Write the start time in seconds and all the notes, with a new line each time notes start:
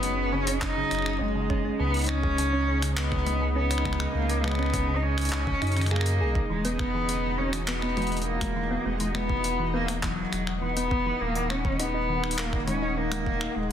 Already playing: F#1 F#3 B3 C#4 D#4 G#4 D#5 F#5
0.03 closed hi-hat
0.32 C#3 C#4
0.47 C#4, closed hi-hat
0.61 C#4 D#4, kick, clap
0.77 C#3
0.91 F#1, finger snap, closed hi-hat
0.95 finger snap
0.99 finger snap
1.02 finger snap
1.06 finger snap
1.10 finger snap
1.13 finger snap
1.17 F#1 G#3, finger snap
1.35 C#3
1.50 C#4, kick
1.65 C#4
1.79 C#2 C#3 B3
1.94 closed hi-hat
1.97 closed hi-hat
1.99 closed hi-hat
2.01 closed hi-hat
2.04 closed hi-hat
2.06 C#4, finger snap, closed hi-hat
2.24 kick
2.38 C#3, closed hi-hat
2.53 C#4
2.68 C#4 D#5
2.82 C#3, finger snap, closed hi-hat
2.97 B3, finger snap, clap
3.12 finger snap, kick
3.27 closed hi-hat, high tom
3.41 C#3
3.56 B3 C#4
3.71 C#4, finger snap, closed hi-hat
3.78 finger snap
3.85 C#3, finger snap, kick, high tom
3.93 finger snap
4.00 finger snap
4.14 C#2 A#3
4.29 closed hi-hat
4.43 C#3 B3, finger snap, high tom
4.48 finger snap
4.52 finger snap
4.55 C#4, finger snap
4.59 finger snap
4.63 finger snap
4.66 finger snap
4.70 C#4, finger snap, kick, closed hi-hat
4.88 C#3
4.96 D#4
5.02 C#4
5.18 finger snap, closed hi-hat
5.21 closed hi-hat
5.25 closed hi-hat
5.29 clap, closed hi-hat
5.47 C#3, kick
5.62 F#2 D#4, finger snap, closed hi-hat
5.67 closed hi-hat
5.72 closed hi-hat
5.77 D#3, finger snap, closed hi-hat
5.81 finger snap, closed hi-hat
5.86 finger snap, closed hi-hat
5.91 A#3 G#4, finger snap
5.96 finger snap
6.01 finger snap
6.06 closed hi-hat
6.21 B1 G#4
6.35 kick
6.49 E1 E3 G#3
6.65 B3, closed hi-hat
6.78 B3 F#4, finger snap, kick
6.94 E3
7.09 closed hi-hat
7.38 C#4
7.42 F#5
7.53 E3, finger snap, closed hi-hat
7.68 B3, finger snap, clap
7.82 B3, finger snap
7.97 E3, closed hi-hat, high tom
8.02 closed hi-hat
8.07 closed hi-hat
8.12 closed hi-hat
8.17 closed hi-hat
8.22 closed hi-hat
8.26 A#3
8.41 finger snap, kick, closed hi-hat, high tom
8.56 E3
8.71 B3
8.85 E1 G#3 B3
9.00 E3, closed hi-hat
9.15 B3, finger snap, high tom
9.30 kick
9.44 closed hi-hat
9.59 E3
9.73 A#3 B3
9.88 B3, finger snap, closed hi-hat
10.03 E3 F#3, kick, clap
10.33 E1, finger snap, closed hi-hat
10.47 finger snap
10.62 E1 E3 B3
10.77 B3, closed hi-hat
10.91 B3, kick
11.06 E3
11.21 D#1 D#3 A#3
11.35 D#4, closed hi-hat
11.50 C#4, finger snap
11.65 D#3, kick
11.70 A#4
11.79 B3 D#4, closed hi-hat
11.94 D#4
12.09 D#3
12.24 finger snap
12.31 closed hi-hat
12.38 A#3, finger snap, clap
12.53 finger snap, kick
12.68 D#3 C#4, closed hi-hat, high tom
12.82 D#4
12.97 A#3 D#4
13.12 D#3, finger snap, closed hi-hat, high tom
13.26 kick
13.41 finger snap
13.56 D#1 G#3